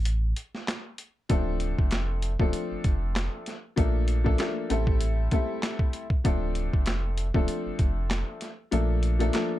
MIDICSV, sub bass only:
0, 0, Header, 1, 2, 480
1, 0, Start_track
1, 0, Key_signature, -1, "minor"
1, 0, Tempo, 618557
1, 1008, Time_signature, 4, 2, 24, 8
1, 7442, End_track
2, 0, Start_track
2, 0, Title_t, "Sub bass"
2, 0, Program_c, 0, 38
2, 0, Note_on_c, 0, 33, 103
2, 258, Note_off_c, 0, 33, 0
2, 1010, Note_on_c, 0, 26, 105
2, 1351, Note_off_c, 0, 26, 0
2, 1388, Note_on_c, 0, 29, 94
2, 1833, Note_off_c, 0, 29, 0
2, 1862, Note_on_c, 0, 26, 87
2, 1959, Note_off_c, 0, 26, 0
2, 2105, Note_on_c, 0, 29, 49
2, 2147, Note_off_c, 0, 29, 0
2, 2210, Note_on_c, 0, 29, 99
2, 2551, Note_off_c, 0, 29, 0
2, 2932, Note_on_c, 0, 34, 103
2, 3379, Note_off_c, 0, 34, 0
2, 3651, Note_on_c, 0, 33, 103
2, 4099, Note_off_c, 0, 33, 0
2, 4851, Note_on_c, 0, 26, 107
2, 5191, Note_off_c, 0, 26, 0
2, 5228, Note_on_c, 0, 29, 93
2, 5673, Note_off_c, 0, 29, 0
2, 5702, Note_on_c, 0, 26, 91
2, 5799, Note_off_c, 0, 26, 0
2, 5945, Note_on_c, 0, 29, 51
2, 5987, Note_off_c, 0, 29, 0
2, 6050, Note_on_c, 0, 29, 100
2, 6391, Note_off_c, 0, 29, 0
2, 6771, Note_on_c, 0, 34, 101
2, 7219, Note_off_c, 0, 34, 0
2, 7442, End_track
0, 0, End_of_file